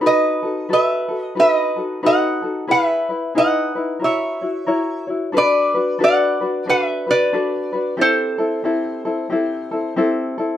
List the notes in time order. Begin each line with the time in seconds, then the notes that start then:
0.01 D#4 F#4 A4 B4
0.06 B4 D#5
0.42 D#4 F#4 A4
0.69 F#4 A4 B4
0.73 B4 E5
1.08 F#4 A4
1.20 D#5
1.35 D#4 F#4 A4 B4
1.40 B4 E5
1.51 D#5
1.76 D#4 F#4 A4
2.03 D#4 F#4 A4 B4 D#5 F#5
2.42 D#4 F#4 A4
2.67 E4 G#4 B4 E5
2.72 B4
3.09 E4 B4
3.35 D#4 E4 G#4 B4 D#5 F#5
3.75 D#4 E4 B4
3.99 E4 F#4 A#4 C#5
4.04 C#5 E5
4.41 E4 F#4 C#5
4.67 E4 F#4 A#4 C#5
5.07 E4 F#4 C#5
5.32 D4 F#4 A4 B4
5.37 B4 D5
5.74 D4 F#4 B4
5.99 D4 F#4 A4 B4
6.04 D5 F#5
6.41 D4 F#4 B4
6.66 D4 F#4 A4 B4
6.70 E5
7.07 D4 F#4 B4 D5
7.33 D4 F#4 A4 B4
7.73 D4 F#4 B4
7.97 C4 E4 G4 A4
8.01 A4 C5
8.38 C4 E4 A4
8.64 C4 E4 G4 A4
9.05 C4 E4 A4
9.30 C4 E4 G4 A4
9.71 C4 E4 A4
9.96 C4 E4 G4 A4
10.38 C4 E4 A4